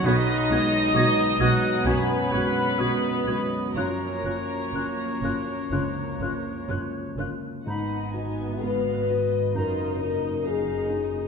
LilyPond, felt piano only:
\new Staff \with { instrumentName = "Felt piano" } { \time 4/4 \key gis \dorian \tempo 4 = 64 b,,8 <gis b fis'>8 <gis b fis'>8 <gis b fis'>8 fis,8 <gis b fis'>8 <gis b fis'>8 <gis b fis'>8 | fis,8 <ais cis' eis'>8 <ais cis' eis'>8 <ais cis' eis'>8 cis,8 <ais cis' eis'>8 <ais cis' eis'>8 <ais cis' eis'>8 | gis,8 <b fis'>8 <gis b fis'>8 <b fis'>8 fis,8 <dis' eis'>8 <ais dis' eis'>8 <dis' eis'>8 | }